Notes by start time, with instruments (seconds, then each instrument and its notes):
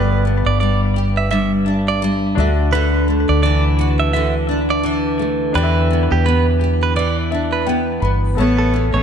Already playing: fingered electric bass G1, nylon-string guitar G2, grand piano B3 G4 D5, clean electric guitar B4
0.25 nylon-string guitar B3
0.46 fingered electric bass G1, clean electric guitar D5
0.60 nylon-string guitar G3, clean electric guitar D5
0.96 nylon-string guitar G4
1.17 clean electric guitar E5
1.31 nylon-string guitar G2, clean electric guitar E5
1.66 nylon-string guitar D4
1.88 clean electric guitar D5
2.02 nylon-string guitar G3
2.35 fingered electric bass D2, nylon-string guitar D3, grand piano D4 F#4
2.39 grand piano E5
2.73 nylon-string guitar D3, clean electric guitar B4
3.08 nylon-string guitar A3
3.29 fingered electric bass D2, clean electric guitar D5
3.43 nylon-string guitar E3, clean electric guitar D5
3.79 nylon-string guitar F#4
4.00 clean electric guitar E5
4.13 nylon-string guitar D3, clean electric guitar E5
4.49 nylon-string guitar D4
4.70 clean electric guitar D5
4.83 nylon-string guitar E3
5.19 nylon-string guitar A3
5.53 fingered electric bass E2, nylon-string guitar E3, grand piano D4 G4, clean electric guitar B4
5.57 grand piano D5
5.63 grand piano E5
5.91 nylon-string guitar B3
6.12 fingered electric bass E2, clean electric guitar G4
6.26 nylon-string guitar B3, clean electric guitar B4
6.61 nylon-string guitar G4
6.83 clean electric guitar B4
6.96 nylon-string guitar E3, clean electric guitar D5
7.31 nylon-string guitar D4, grand piano E5
7.53 clean electric guitar B4
7.67 nylon-string guitar B3, grand piano G5
8.02 fingered electric bass G1, nylon-string guitar B3, grand piano B5
8.35 fingered electric bass A1, nylon-string guitar A3, grand piano B3 A4 C#5, cello B3
8.58 clean electric guitar A4
8.74 nylon-string guitar C#4
8.94 fingered electric bass A1, cello A3, clean electric guitar C#5